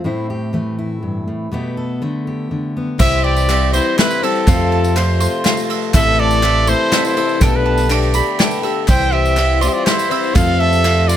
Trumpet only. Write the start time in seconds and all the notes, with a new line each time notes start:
3.00 E5
3.24 D5
3.74 C5
3.98 B4
4.24 A4
4.97 C5
5.95 E5
6.20 D5
6.69 C5
7.06 C5
7.44 A4
7.56 B4
7.92 D5
8.89 G5
9.13 E5
9.62 D5
9.69 E5
9.73 D5
9.85 C5
10.35 F5
10.60 E5
11.08 D5